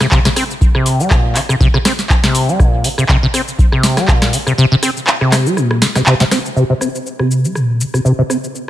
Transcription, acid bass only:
0.00 0.07 C3 medium
0.12 0.19 C3 loud
0.25 0.29 C3 loud
0.36 0.44 C4 medium
0.75 1.01 C3 medium
1.00 1.12 G3 medium
1.11 1.37 A#2 medium
1.35 1.40 D3 loud
1.49 1.55 C3 medium
1.60 1.68 C3 loud
1.74 1.78 C3 loud
1.85 1.93 C4 medium
2.24 2.50 C3 medium
2.48 2.61 G3 medium
2.59 2.86 A#2 medium
2.84 2.89 D3 loud
2.98 3.04 C3 medium
3.09 3.17 C3 loud
3.23 3.26 C3 loud
3.34 3.41 C4 medium
3.72 3.99 C3 medium
3.97 4.10 G3 medium
4.08 4.35 A#2 medium
4.33 4.38 D3 loud
4.47 4.53 C3 medium
4.58 4.65 C3 loud
4.71 4.75 C3 loud
4.83 4.90 C4 medium
5.21 5.47 C3 medium
5.46 5.58 G3 medium
5.57 5.83 A#2 medium
5.82 5.86 D3 loud
5.95 6.02 C3 medium
6.07 6.14 C3 loud
6.20 6.24 C3 loud
6.31 6.39 C4 medium
6.56 6.64 C3 medium
6.70 6.74 C3 loud
6.81 6.89 C4 medium
7.19 7.46 C3 medium
7.44 7.57 G3 medium
7.55 7.82 A#2 medium
7.80 7.85 D3 loud
7.94 8.00 C3 medium
8.05 8.12 C3 loud
8.19 8.22 C3 loud
8.30 8.37 C4 medium

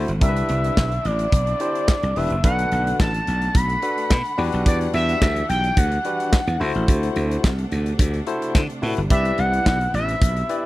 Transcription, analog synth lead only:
0.22 1.07 E5 medium
1.06 2.18 D5 loud
2.16 2.43 E5 medium
2.44 2.95 F#5 loud
3.00 3.58 A5 loud
3.56 4.39 B5 loud
4.66 4.79 D5 medium
4.94 5.45 E5 loud
5.49 5.79 G5 loud
5.78 6.61 F#5 loud
9.11 9.40 E5 loud
9.39 9.94 F#5 loud
9.95 10.66 E5 loud

